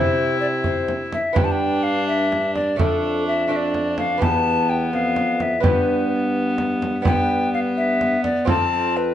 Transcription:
Already playing: C3 C4 E4 G4 C5
0.41 D5
0.64 C5, frame drum
0.88 frame drum
1.13 E5, frame drum
1.33 G2 B3 D4 G4, frame drum
1.38 G5
1.45 A5
1.52 G5
1.83 F5
2.08 E5
2.32 frame drum
2.55 D5, frame drum
2.76 F2 A3 D4 A4, frame drum
3.27 E5
3.48 A3 D4 A4
3.52 E5
3.56 D5
3.74 frame drum
3.98 F5, frame drum
4.18 E2 E3 B3 G4
4.22 E2 B3 A5, frame drum
4.69 G5
4.93 F2 F5
5.16 frame drum
5.40 E5, frame drum
5.60 G2 B3 D4 G4, frame drum
5.65 B4
6.58 frame drum
6.82 frame drum
7.02 B3 D4 G4, frame drum
7.07 B3 G5
7.54 F5
7.77 E5
8.01 frame drum
8.24 D5, frame drum
8.45 F2 C4 F4 A4, frame drum
8.49 F2 A5
8.97 B4

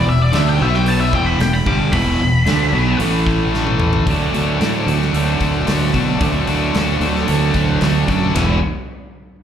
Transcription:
0.07 E1 E2 B2 E5
0.22 D5
0.32 D2 D3 A3 D4 E5, snare, open hi-hat
0.49 G5
0.59 B1 B2 F#3 B3 E5
0.74 G5, snare
0.86 A5, open hi-hat
1.01 E5
1.13 E1 E2 B2 E3 G5, kick
1.26 B5
1.39 E1 E2 B2 G5, snare, open hi-hat
1.53 B5
1.66 G1 G2 D3 G3 D6, kick
1.92 E1 E2 B2 E3 B5, kick, open hi-hat
2.20 E1 E2 B2
2.46 D2 D3 A3 D4, snare, open hi-hat
2.73 B1 B2 F#3 B3
2.99 A1 A2 E3 A3, open hi-hat
3.27 kick, snare
3.54 snare
3.67 high tom
3.80 mid tom
3.93 floor tom
4.06 D2 D3 F#3 A3 D4 F#4, kick, open hi-hat
4.34 D2 A3 D4 F#4, open hi-hat
4.59 A2 D3 A3 D4 F#4, snare, open hi-hat
4.86 D2 A3 D4 F#4, open hi-hat
5.02 snare
5.13 D2 D3 F#3 A3, open hi-hat
5.17 D4
5.40 D2, kick, snare, open hi-hat
5.66 D2 D3 A3 D4 F#4, snare, open hi-hat
5.92 B2 A3 D4 F#4, kick, open hi-hat
6.19 D2 D3 F#3 A3 D4 F#4, kick, open hi-hat
6.47 D2 A3 D4 F#4, open hi-hat
6.74 D2 D3 A3 D4 F#4, snare, open hi-hat
7.01 D2 A3 D4 F#4, open hi-hat
7.16 snare
7.26 D2 D3 F#3 A3 D4, open hi-hat
7.54 D2, kick, snare, open hi-hat
7.81 D2 D3 A3 D4 F#4, snare, open hi-hat
8.08 F#2 A3 D4 F#4, kick, open hi-hat
8.35 E1 E2 B2 E3 G#3 B3 E4, snare, floor tom, ride bell

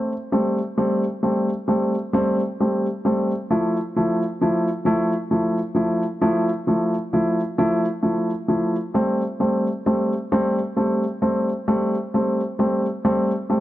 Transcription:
Already playing: A3 C4
0.32 G3 A3 C4
0.78 G3 A3 C4
1.23 G3 A3 C4
1.68 G3 A3 C4
2.13 G3 A3 C4
2.60 G3 A3 C4
3.05 G3 A3 C4
3.50 F3 A3 E4
3.96 F3 A3 E4
4.41 F3 A3 E4
4.85 F3 A3 E4
5.31 F3 A3 E4
5.75 F3 A3 E4
6.21 F3 A3 E4
6.67 F3 A3 E4
7.13 F3 A3 E4
7.58 F3 A3 E4
8.03 F3 A3 E4
8.48 F3 A3 E4
8.94 G3 A3 C4
9.40 G3 A3 C4
9.86 G3 A3 C4
10.32 G3 A3 C4
10.76 G3 A3 C4
11.22 G3 A3 C4
11.68 G3 A3 C4
12.14 G3 A3 C4
12.59 G3 A3 C4
13.05 G3 A3 C4
13.50 G3 A3 C4

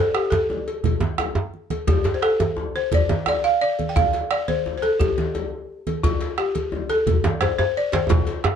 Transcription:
Already playing: A4
0.15 G4, bombo rim
0.30 A4, cowbell, djembe tone, high conga
0.50 djembe tone
0.68 cowbell
0.84 bombo rim, bombo low, cowbell, high conga, low conga, djembe bass
1.00 bombo rim, djembe slap, djembe tone, high conga
1.18 bombo rim, cowbell, djembe slap, djembe tone
1.35 djembe tone, high conga
1.54 high conga
1.70 bombo rim, cowbell, high conga
1.87 G4, bombo low, cowbell, djembe tone, djembe bass, low conga
2.04 cowbell, djembe slap, djembe tone
2.14 C5
2.22 A4, bombo rim, djembe slap
2.39 cowbell, djembe slap, djembe tone, high conga
2.56 djembe slap, djembe tone
2.75 C5, high conga
2.92 D5, bombo low, cowbell, djembe bass, low conga
3.09 djembe slap, djembe tone, high conga
3.26 D5, bombo rim, cowbell, djembe tone
3.44 F5
3.62 D5
3.79 cowbell, high conga
3.89 G5
3.96 F5, bombo low, cowbell, djembe tone, djembe bass, low conga
4.13 cowbell, djembe slap
4.31 D5, bombo rim, djembe slap
4.48 C5, cowbell, djembe slap, high conga
4.66 djembe slap, djembe tone
4.78 C5
4.82 A4, cowbell, high conga
5.00 G4, bombo low, cowbell, djembe bass, low conga
5.18 djembe slap, high conga
5.35 cowbell, djembe tone
5.87 cowbell, high conga
6.03 F4, bombo low, cowbell, djembe tone, djembe bass, low conga
6.21 cowbell, djembe slap
6.38 G4, bombo rim, djembe slap
6.55 cowbell, djembe slap, high conga
6.72 djembe slap, djembe tone
6.89 A4, cowbell, high conga
7.06 bombo low, cowbell, djembe bass, low conga
7.24 djembe slap, djembe tone, high conga
7.41 C5, bombo rim, cowbell, djembe tone
7.59 C5, djembe tone
7.77 D5
7.92 C5, cowbell, djembe slap, high conga
8.09 F4, bombo low, cowbell, djembe tone, djembe bass, low conga
8.27 cowbell, djembe slap
8.44 bombo rim, djembe tone

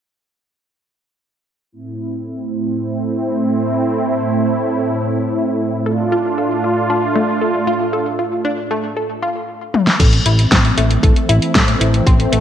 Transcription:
1.72 A2 A3 C4 E4
5.86 A3 D4 F4 A4
6.12 F4
6.38 A4
6.64 F4
6.90 D4
7.16 A3
7.41 A4
7.67 F4
7.93 A4
8.19 F4
8.45 D4
8.71 A3
8.97 A4
9.22 F4
9.74 high tom
9.87 snare
10.00 A1 E3 A3 C4 A4, kick, closed hi-hat, crash
10.13 closed hi-hat
10.26 A1 E4, closed hi-hat
10.39 closed hi-hat
10.51 A1 C4, kick, snare, closed hi-hat
10.65 closed hi-hat
10.77 A1 A3, closed hi-hat
10.91 closed hi-hat
11.03 A1 A4, kick, closed hi-hat
11.16 closed hi-hat
11.29 A1 E4, closed hi-hat
11.42 closed hi-hat
11.55 A2 A4, kick, snare, closed hi-hat
11.68 closed hi-hat
11.81 A1 E4, closed hi-hat
11.94 closed hi-hat
12.06 A1 C4, kick, closed hi-hat
12.20 closed hi-hat
12.32 A1 A3, closed hi-hat

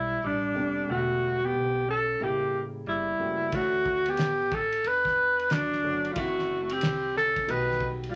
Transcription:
Already playing: B1 G3 E4
0.22 A1 G3 D4
0.54 F1 C3 G3 A3 B3 D4
0.88 E1 D3 G3 A3 B3 F#4 F#5
1.44 B3 G4
1.54 B1
1.89 C#4 A4
2.20 A1 C#3 G3 A#3 E4 G4 A4
2.86 G1 G3 E4
3.19 F#1 C#3 G3 A3 A#3 F#4
3.52 D2 D3 E3 A3 C#4 E4 F#4, kick, ride
3.86 kick
4.06 B3, ride
4.10 G4
4.17 A1, snare, hi-hat pedal, ride
4.52 C#4 A4, kick
4.72 ride
4.84 E2 D4 B4, ride
5.05 kick, snare
5.39 ride
5.50 D2 F#3 D4, snare, hi-hat pedal, ride
5.73 snare
5.83 G1 D3 F#3 A3 C#4 F#4
6.05 ride
6.12 E3 G3 F4
6.16 F#1 A3 C4 E4 F#4, kick, ride
6.39 snare
6.62 A3 F#4
6.69 C4 G4, ride
6.81 C2, snare, hi-hat pedal, ride
7.16 C#4 A4, snare
7.36 kick, ride
7.47 B1 D#3 G3 A3 B3 D#4 F#4 B4, ride
7.71 snare
7.80 kick
8.04 ride
8.09 G3 F4

